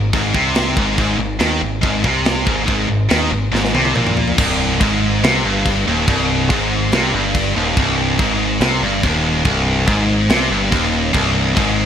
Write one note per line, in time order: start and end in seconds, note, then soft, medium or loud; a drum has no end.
0.00 0.11 G#1 medium
0.13 0.33 G#1 loud
0.13 0.34 G#2 loud
0.13 kick loud
0.13 crash medium
0.34 0.74 C2 medium
0.34 0.76 C3 loud
0.34 kick loud
0.55 snare loud
0.55 crash medium
0.77 0.97 G#1 medium
0.77 0.97 G#2 loud
0.77 kick loud
0.98 1.18 G#1 loud
0.98 1.18 G#2 loud
0.98 kick loud
0.98 crash medium
1.18 1.38 G#1 medium
1.18 1.36 G#2 medium
1.40 1.60 D#2 loud
1.40 1.61 D#3 loud
1.40 snare loud
1.40 crash medium
1.61 1.81 G#1 medium
1.61 1.78 G#2 medium
1.81 2.03 G#1 loud
1.81 2.03 G#2 loud
1.81 kick loud
1.81 crash medium
2.03 2.44 C2 medium
2.03 2.45 C3 loud
2.03 kick loud
2.25 snare loud
2.25 crash medium
2.46 2.67 G#1 medium
2.46 2.64 G#2 loud
2.46 kick medium
2.66 2.88 G#1 loud
2.66 2.87 G#2 loud
2.66 kick loud
2.66 crash medium
2.88 3.08 G#1 medium
2.88 3.06 G#2 medium
3.10 3.30 D#2 medium
3.10 3.30 D#3 loud
3.10 snare loud
3.10 crash medium
3.31 3.51 G#1 medium
3.31 3.48 G#2 medium
3.52 3.72 G#1 loud
3.52 3.73 G#2 loud
3.52 snare medium
3.65 snare medium
3.73 3.94 C2 medium
3.73 3.94 C3 loud
3.73 high tom medium
3.85 high tom medium
3.94 4.35 A#1 medium
3.94 4.36 A#2 loud
3.94 mid tom medium
4.07 mid tom medium
4.17 floor tom medium
4.28 floor tom medium
4.38 4.78 C1 loud
4.38 4.79 C2 loud
4.38 kick loud
4.38 crash loud
4.38 crash medium
4.80 5.20 G#1 loud
4.80 5.22 G#2 loud
4.80 kick loud
4.80 crash medium
5.23 5.43 C2 loud
5.23 5.43 C3 loud
5.23 snare loud
5.23 crash medium
5.44 5.84 G1 medium
5.44 5.86 G2 loud
5.66 kick medium
5.66 crash medium
5.87 6.06 D#1 medium
5.87 6.07 D#2 loud
6.07 6.47 C1 loud
6.07 6.49 C2 loud
6.07 kick loud
6.07 crash medium
6.50 6.89 G#1 loud
6.50 6.92 G#2 loud
6.50 kick loud
6.50 crash medium
6.92 7.12 C2 loud
6.92 7.13 C3 loud
6.92 snare loud
6.92 crash medium
7.13 7.53 G1 medium
7.13 7.55 G2 loud
7.35 kick loud
7.35 crash medium
7.56 7.75 D#1 loud
7.56 7.76 D#2 loud
7.77 8.16 C1 loud
7.77 8.19 C2 loud
7.77 kick loud
7.77 crash medium
8.19 8.58 G#1 loud
8.19 8.61 G#2 loud
8.19 kick loud
8.19 crash medium
8.61 8.80 C2 loud
8.61 8.82 C3 loud
8.61 snare loud
8.61 crash medium
8.82 9.02 G1 loud
8.82 9.03 G2 loud
9.03 9.43 D#1 medium
9.03 9.44 D#2 loud
9.03 kick medium
9.03 crash medium
9.45 9.85 C1 loud
9.45 9.87 C2 loud
9.45 kick loud
9.45 crash medium
9.87 10.27 G#1 loud
9.87 10.29 G#2 loud
9.87 kick loud
9.87 crash medium
10.30 10.49 C2 loud
10.30 10.51 C3 loud
10.30 snare loud
10.30 crash medium
10.50 10.71 G1 medium
10.50 10.71 G2 loud
10.71 11.12 D#1 loud
10.71 11.13 D#2 loud
10.71 kick medium
10.71 crash medium
11.13 11.54 C1 loud
11.13 11.55 C2 loud
11.13 kick loud
11.13 crash medium
11.56 11.86 G#1 loud
11.56 11.86 G#2 loud
11.56 kick loud
11.56 crash medium